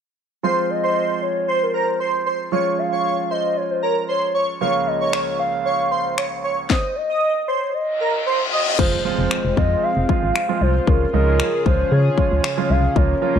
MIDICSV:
0, 0, Header, 1, 9, 480
1, 0, Start_track
1, 0, Key_signature, -4, "minor"
1, 0, Tempo, 521739
1, 404, Time_signature, 4, 2, 24, 8
1, 12322, End_track
2, 0, Start_track
2, 0, Title_t, "Soft synth lead"
2, 0, Program_c, 0, 80
2, 409, Note_on_c, 0, 72, 95
2, 646, Note_on_c, 0, 75, 102
2, 660, Note_off_c, 0, 72, 0
2, 1119, Note_off_c, 0, 75, 0
2, 1125, Note_on_c, 0, 73, 96
2, 1364, Note_on_c, 0, 72, 99
2, 1378, Note_off_c, 0, 73, 0
2, 1495, Note_on_c, 0, 70, 84
2, 1509, Note_off_c, 0, 72, 0
2, 1601, Note_off_c, 0, 70, 0
2, 1607, Note_on_c, 0, 72, 91
2, 1828, Note_off_c, 0, 72, 0
2, 2326, Note_on_c, 0, 73, 107
2, 2563, Note_on_c, 0, 77, 113
2, 2576, Note_off_c, 0, 73, 0
2, 3044, Note_on_c, 0, 75, 101
2, 3058, Note_off_c, 0, 77, 0
2, 3281, Note_on_c, 0, 73, 103
2, 3295, Note_off_c, 0, 75, 0
2, 3409, Note_on_c, 0, 72, 86
2, 3422, Note_off_c, 0, 73, 0
2, 3517, Note_off_c, 0, 72, 0
2, 3523, Note_on_c, 0, 73, 93
2, 3631, Note_off_c, 0, 73, 0
2, 3765, Note_on_c, 0, 73, 90
2, 4106, Note_off_c, 0, 73, 0
2, 4241, Note_on_c, 0, 77, 108
2, 4482, Note_on_c, 0, 75, 99
2, 4495, Note_off_c, 0, 77, 0
2, 4724, Note_on_c, 0, 73, 96
2, 4738, Note_off_c, 0, 75, 0
2, 4958, Note_off_c, 0, 73, 0
2, 4963, Note_on_c, 0, 77, 102
2, 5887, Note_off_c, 0, 77, 0
2, 6163, Note_on_c, 0, 72, 98
2, 6402, Note_on_c, 0, 75, 114
2, 6415, Note_off_c, 0, 72, 0
2, 6880, Note_on_c, 0, 73, 97
2, 6894, Note_off_c, 0, 75, 0
2, 7121, Note_on_c, 0, 75, 97
2, 7134, Note_off_c, 0, 73, 0
2, 7602, Note_off_c, 0, 75, 0
2, 7843, Note_on_c, 0, 75, 97
2, 8067, Note_off_c, 0, 75, 0
2, 8085, Note_on_c, 0, 72, 100
2, 8307, Note_off_c, 0, 72, 0
2, 8807, Note_on_c, 0, 75, 103
2, 9046, Note_on_c, 0, 77, 118
2, 9060, Note_off_c, 0, 75, 0
2, 9280, Note_off_c, 0, 77, 0
2, 9285, Note_on_c, 0, 77, 115
2, 9764, Note_on_c, 0, 72, 95
2, 9778, Note_off_c, 0, 77, 0
2, 10005, Note_on_c, 0, 70, 98
2, 10019, Note_off_c, 0, 72, 0
2, 10240, Note_off_c, 0, 70, 0
2, 10246, Note_on_c, 0, 70, 98
2, 10691, Note_off_c, 0, 70, 0
2, 10726, Note_on_c, 0, 72, 94
2, 10965, Note_on_c, 0, 73, 105
2, 10979, Note_off_c, 0, 72, 0
2, 11200, Note_off_c, 0, 73, 0
2, 11205, Note_on_c, 0, 73, 103
2, 11685, Note_on_c, 0, 77, 104
2, 11699, Note_off_c, 0, 73, 0
2, 11927, Note_on_c, 0, 73, 100
2, 11940, Note_off_c, 0, 77, 0
2, 12160, Note_off_c, 0, 73, 0
2, 12165, Note_on_c, 0, 73, 102
2, 12322, Note_off_c, 0, 73, 0
2, 12322, End_track
3, 0, Start_track
3, 0, Title_t, "Digital synth lead"
3, 0, Program_c, 1, 84
3, 401, Note_on_c, 1, 72, 95
3, 508, Note_off_c, 1, 72, 0
3, 767, Note_on_c, 1, 72, 77
3, 1101, Note_off_c, 1, 72, 0
3, 1361, Note_on_c, 1, 72, 85
3, 1561, Note_off_c, 1, 72, 0
3, 1601, Note_on_c, 1, 70, 74
3, 1708, Note_off_c, 1, 70, 0
3, 1840, Note_on_c, 1, 72, 79
3, 1947, Note_off_c, 1, 72, 0
3, 2080, Note_on_c, 1, 72, 79
3, 2187, Note_off_c, 1, 72, 0
3, 2321, Note_on_c, 1, 73, 95
3, 2428, Note_off_c, 1, 73, 0
3, 2689, Note_on_c, 1, 73, 69
3, 2889, Note_off_c, 1, 73, 0
3, 3042, Note_on_c, 1, 72, 73
3, 3148, Note_off_c, 1, 72, 0
3, 3520, Note_on_c, 1, 70, 77
3, 3627, Note_off_c, 1, 70, 0
3, 3760, Note_on_c, 1, 72, 79
3, 3867, Note_off_c, 1, 72, 0
3, 3999, Note_on_c, 1, 73, 78
3, 4106, Note_off_c, 1, 73, 0
3, 4241, Note_on_c, 1, 73, 95
3, 4348, Note_off_c, 1, 73, 0
3, 4609, Note_on_c, 1, 73, 78
3, 4941, Note_off_c, 1, 73, 0
3, 5201, Note_on_c, 1, 73, 87
3, 5401, Note_off_c, 1, 73, 0
3, 5442, Note_on_c, 1, 72, 70
3, 5548, Note_off_c, 1, 72, 0
3, 5682, Note_on_c, 1, 73, 77
3, 5788, Note_off_c, 1, 73, 0
3, 5923, Note_on_c, 1, 73, 81
3, 6029, Note_off_c, 1, 73, 0
3, 6161, Note_on_c, 1, 75, 93
3, 6268, Note_off_c, 1, 75, 0
3, 6529, Note_on_c, 1, 75, 70
3, 6729, Note_off_c, 1, 75, 0
3, 6882, Note_on_c, 1, 72, 77
3, 6988, Note_off_c, 1, 72, 0
3, 7363, Note_on_c, 1, 70, 77
3, 7469, Note_off_c, 1, 70, 0
3, 7603, Note_on_c, 1, 72, 79
3, 7709, Note_off_c, 1, 72, 0
3, 7843, Note_on_c, 1, 75, 77
3, 7949, Note_off_c, 1, 75, 0
3, 12322, End_track
4, 0, Start_track
4, 0, Title_t, "Analog synth pad"
4, 0, Program_c, 2, 89
4, 8083, Note_on_c, 2, 56, 81
4, 8084, Note_on_c, 2, 65, 93
4, 8085, Note_on_c, 2, 60, 79
4, 9984, Note_off_c, 2, 56, 0
4, 9985, Note_off_c, 2, 60, 0
4, 10001, Note_on_c, 2, 68, 98
4, 10002, Note_on_c, 2, 49, 84
4, 10003, Note_on_c, 2, 61, 75
4, 11887, Note_off_c, 2, 65, 0
4, 11903, Note_off_c, 2, 68, 0
4, 11920, Note_on_c, 2, 70, 98
4, 11921, Note_on_c, 2, 65, 78
4, 12322, Note_off_c, 2, 49, 0
4, 12322, Note_off_c, 2, 61, 0
4, 12322, Note_off_c, 2, 65, 0
4, 12322, Note_off_c, 2, 70, 0
4, 12322, End_track
5, 0, Start_track
5, 0, Title_t, "Grand piano"
5, 0, Program_c, 3, 0
5, 398, Note_on_c, 3, 53, 62
5, 401, Note_on_c, 3, 56, 56
5, 404, Note_on_c, 3, 60, 57
5, 406, Note_on_c, 3, 65, 68
5, 2284, Note_off_c, 3, 53, 0
5, 2285, Note_off_c, 3, 56, 0
5, 2287, Note_off_c, 3, 60, 0
5, 2288, Note_off_c, 3, 65, 0
5, 2318, Note_on_c, 3, 53, 63
5, 2320, Note_on_c, 3, 56, 57
5, 2324, Note_on_c, 3, 61, 58
5, 2328, Note_on_c, 3, 65, 70
5, 4204, Note_off_c, 3, 53, 0
5, 4205, Note_off_c, 3, 56, 0
5, 4207, Note_off_c, 3, 61, 0
5, 4209, Note_off_c, 3, 65, 0
5, 4239, Note_on_c, 3, 37, 60
5, 4242, Note_on_c, 3, 53, 55
5, 4243, Note_on_c, 3, 58, 58
5, 4246, Note_on_c, 3, 61, 59
5, 4248, Note_on_c, 3, 65, 69
5, 6125, Note_off_c, 3, 37, 0
5, 6126, Note_off_c, 3, 53, 0
5, 6127, Note_off_c, 3, 58, 0
5, 6128, Note_off_c, 3, 61, 0
5, 6129, Note_off_c, 3, 65, 0
5, 8083, Note_on_c, 3, 53, 72
5, 8085, Note_on_c, 3, 56, 67
5, 8087, Note_on_c, 3, 60, 65
5, 8088, Note_on_c, 3, 65, 79
5, 8235, Note_off_c, 3, 53, 0
5, 8236, Note_off_c, 3, 56, 0
5, 8237, Note_off_c, 3, 60, 0
5, 8237, Note_off_c, 3, 65, 0
5, 8324, Note_on_c, 3, 53, 71
5, 8325, Note_on_c, 3, 56, 65
5, 8327, Note_on_c, 3, 60, 63
5, 8328, Note_on_c, 3, 65, 78
5, 8619, Note_off_c, 3, 53, 0
5, 8619, Note_off_c, 3, 56, 0
5, 8620, Note_off_c, 3, 60, 0
5, 8621, Note_off_c, 3, 65, 0
5, 8804, Note_on_c, 3, 53, 68
5, 8806, Note_on_c, 3, 56, 65
5, 8808, Note_on_c, 3, 60, 64
5, 8809, Note_on_c, 3, 65, 77
5, 9099, Note_off_c, 3, 53, 0
5, 9100, Note_off_c, 3, 56, 0
5, 9101, Note_off_c, 3, 60, 0
5, 9101, Note_off_c, 3, 65, 0
5, 9284, Note_on_c, 3, 53, 70
5, 9286, Note_on_c, 3, 56, 67
5, 9287, Note_on_c, 3, 60, 63
5, 9289, Note_on_c, 3, 65, 77
5, 9504, Note_off_c, 3, 53, 0
5, 9505, Note_off_c, 3, 56, 0
5, 9506, Note_off_c, 3, 60, 0
5, 9506, Note_off_c, 3, 65, 0
5, 9649, Note_on_c, 3, 53, 72
5, 9651, Note_on_c, 3, 56, 65
5, 9652, Note_on_c, 3, 60, 65
5, 9653, Note_on_c, 3, 65, 82
5, 9867, Note_off_c, 3, 53, 0
5, 9868, Note_off_c, 3, 56, 0
5, 9869, Note_off_c, 3, 60, 0
5, 9870, Note_off_c, 3, 65, 0
5, 10004, Note_on_c, 3, 53, 73
5, 10005, Note_on_c, 3, 56, 67
5, 10006, Note_on_c, 3, 61, 65
5, 10008, Note_on_c, 3, 65, 76
5, 10155, Note_off_c, 3, 53, 0
5, 10156, Note_off_c, 3, 56, 0
5, 10157, Note_off_c, 3, 61, 0
5, 10158, Note_off_c, 3, 65, 0
5, 10243, Note_on_c, 3, 53, 74
5, 10245, Note_on_c, 3, 56, 67
5, 10246, Note_on_c, 3, 61, 66
5, 10248, Note_on_c, 3, 63, 83
5, 10538, Note_off_c, 3, 53, 0
5, 10539, Note_off_c, 3, 56, 0
5, 10540, Note_off_c, 3, 61, 0
5, 10541, Note_off_c, 3, 63, 0
5, 10725, Note_on_c, 3, 53, 69
5, 10726, Note_on_c, 3, 56, 61
5, 10727, Note_on_c, 3, 61, 65
5, 10729, Note_on_c, 3, 65, 78
5, 11019, Note_off_c, 3, 53, 0
5, 11020, Note_off_c, 3, 56, 0
5, 11020, Note_off_c, 3, 61, 0
5, 11021, Note_off_c, 3, 65, 0
5, 11203, Note_on_c, 3, 53, 75
5, 11204, Note_on_c, 3, 56, 62
5, 11205, Note_on_c, 3, 61, 68
5, 11208, Note_on_c, 3, 65, 76
5, 11423, Note_off_c, 3, 53, 0
5, 11424, Note_off_c, 3, 56, 0
5, 11425, Note_off_c, 3, 61, 0
5, 11426, Note_off_c, 3, 65, 0
5, 11569, Note_on_c, 3, 53, 71
5, 11571, Note_on_c, 3, 56, 67
5, 11572, Note_on_c, 3, 61, 67
5, 11573, Note_on_c, 3, 65, 81
5, 11787, Note_off_c, 3, 53, 0
5, 11789, Note_off_c, 3, 56, 0
5, 11789, Note_off_c, 3, 61, 0
5, 11790, Note_off_c, 3, 65, 0
5, 11921, Note_on_c, 3, 53, 73
5, 11923, Note_on_c, 3, 58, 67
5, 11924, Note_on_c, 3, 61, 68
5, 11926, Note_on_c, 3, 65, 78
5, 12074, Note_off_c, 3, 53, 0
5, 12075, Note_off_c, 3, 58, 0
5, 12076, Note_off_c, 3, 61, 0
5, 12076, Note_off_c, 3, 65, 0
5, 12159, Note_on_c, 3, 53, 75
5, 12161, Note_on_c, 3, 58, 64
5, 12162, Note_on_c, 3, 61, 69
5, 12164, Note_on_c, 3, 65, 83
5, 12322, Note_off_c, 3, 53, 0
5, 12322, Note_off_c, 3, 58, 0
5, 12322, Note_off_c, 3, 61, 0
5, 12322, Note_off_c, 3, 65, 0
5, 12322, End_track
6, 0, Start_track
6, 0, Title_t, "FM bass"
6, 0, Program_c, 4, 39
6, 8086, Note_on_c, 4, 29, 116
6, 8253, Note_off_c, 4, 29, 0
6, 8452, Note_on_c, 4, 29, 98
6, 8531, Note_off_c, 4, 29, 0
6, 8691, Note_on_c, 4, 29, 96
6, 8770, Note_off_c, 4, 29, 0
6, 8806, Note_on_c, 4, 41, 93
6, 8973, Note_off_c, 4, 41, 0
6, 9171, Note_on_c, 4, 29, 88
6, 9250, Note_off_c, 4, 29, 0
6, 9412, Note_on_c, 4, 32, 92
6, 9490, Note_off_c, 4, 32, 0
6, 9765, Note_on_c, 4, 36, 94
6, 9933, Note_off_c, 4, 36, 0
6, 10005, Note_on_c, 4, 37, 111
6, 10172, Note_off_c, 4, 37, 0
6, 10246, Note_on_c, 4, 37, 93
6, 10502, Note_off_c, 4, 37, 0
6, 10726, Note_on_c, 4, 37, 90
6, 10893, Note_off_c, 4, 37, 0
6, 10965, Note_on_c, 4, 49, 103
6, 11133, Note_off_c, 4, 49, 0
6, 11332, Note_on_c, 4, 37, 87
6, 11410, Note_off_c, 4, 37, 0
6, 11685, Note_on_c, 4, 36, 93
6, 11853, Note_off_c, 4, 36, 0
6, 11923, Note_on_c, 4, 37, 100
6, 12091, Note_off_c, 4, 37, 0
6, 12291, Note_on_c, 4, 37, 100
6, 12322, Note_off_c, 4, 37, 0
6, 12322, End_track
7, 0, Start_track
7, 0, Title_t, "Impact"
7, 0, Program_c, 5, 103
7, 8086, Note_on_c, 5, 60, 74
7, 10005, Note_off_c, 5, 60, 0
7, 12322, End_track
8, 0, Start_track
8, 0, Title_t, "Reverse cymbal"
8, 0, Program_c, 6, 119
8, 7125, Note_on_c, 6, 60, 76
8, 8084, Note_off_c, 6, 60, 0
8, 12322, End_track
9, 0, Start_track
9, 0, Title_t, "Drums"
9, 4723, Note_on_c, 9, 26, 101
9, 4815, Note_off_c, 9, 26, 0
9, 5685, Note_on_c, 9, 26, 103
9, 5777, Note_off_c, 9, 26, 0
9, 6163, Note_on_c, 9, 36, 105
9, 6163, Note_on_c, 9, 38, 88
9, 6255, Note_off_c, 9, 36, 0
9, 6255, Note_off_c, 9, 38, 0
9, 8086, Note_on_c, 9, 36, 107
9, 8086, Note_on_c, 9, 49, 83
9, 8178, Note_off_c, 9, 36, 0
9, 8178, Note_off_c, 9, 49, 0
9, 8566, Note_on_c, 9, 26, 108
9, 8658, Note_off_c, 9, 26, 0
9, 8807, Note_on_c, 9, 36, 90
9, 8899, Note_off_c, 9, 36, 0
9, 9283, Note_on_c, 9, 36, 84
9, 9375, Note_off_c, 9, 36, 0
9, 9527, Note_on_c, 9, 26, 111
9, 9619, Note_off_c, 9, 26, 0
9, 10004, Note_on_c, 9, 36, 107
9, 10096, Note_off_c, 9, 36, 0
9, 10485, Note_on_c, 9, 26, 108
9, 10577, Note_off_c, 9, 26, 0
9, 10726, Note_on_c, 9, 36, 91
9, 10818, Note_off_c, 9, 36, 0
9, 11202, Note_on_c, 9, 36, 85
9, 11294, Note_off_c, 9, 36, 0
9, 11446, Note_on_c, 9, 26, 112
9, 11538, Note_off_c, 9, 26, 0
9, 11923, Note_on_c, 9, 36, 109
9, 12015, Note_off_c, 9, 36, 0
9, 12322, End_track
0, 0, End_of_file